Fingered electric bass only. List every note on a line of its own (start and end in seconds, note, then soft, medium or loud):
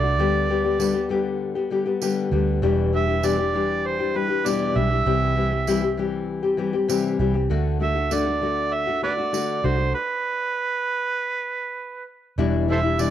0.00 0.18 C2 medium
0.18 2.28 D2 medium
2.31 2.60 D2 medium
2.62 4.72 E1 loud
4.76 5.04 B1 medium
5.06 7.16 C2 loud
7.19 7.48 C2 medium
7.50 9.60 D2 loud
9.64 9.92 C2 medium
12.38 13.10 E1 loud